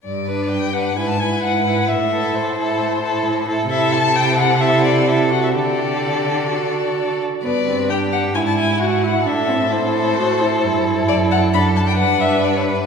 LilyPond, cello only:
\new Staff \with { instrumentName = "Cello" } { \clef bass \time 4/4 \key a \dorian \tempo 4 = 131 g,4 g,4 gis,4 gis,4 | a,4 a,4 a,4 a,4 | c1 | d2.~ d8 r8 |
g,2 gis,2 | a,2. g,4 | \key d \major fis,2 g,2 | }